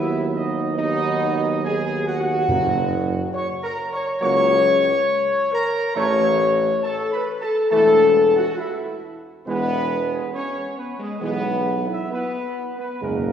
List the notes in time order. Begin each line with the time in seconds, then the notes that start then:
Already playing: D#2 F#3 B3 E4 E5
0.35 D#4 D#5
0.74 F#3 B3 D#4 D#5
1.64 G#4 G#5
2.07 F#4 F#5
2.20 F#4 F#5
2.48 F#1 F#2 F#3 A#3
3.34 C#5 C#6
3.63 A#4 A#5
3.93 C#5 C#6
4.21 C#2 F#3 A#3 C#5 C#6
5.52 A#4 A#5
5.95 A1 E3 A3 C#5 C#6
6.82 A5
6.86 A4
7.11 B4 B5
7.41 A4 A5
7.69 E3 A3 A4 A5
7.73 E1
8.36 F#4 F#5
8.58 E4 E5
9.47 E1 E3 G#3 B3 B4
10.12 G#3 G#4
10.33 C#4 C#5
10.77 B3 B4
10.99 G#3 G#4
11.20 B1 E3 G#3 B3
11.24 B4
11.87 E4 E5
12.11 B3 B4
12.79 B3 B4
13.01 F#1 F#2 C#3 G#3 A#3 A#4
13.10 F#2
13.18 F#2
13.27 F#2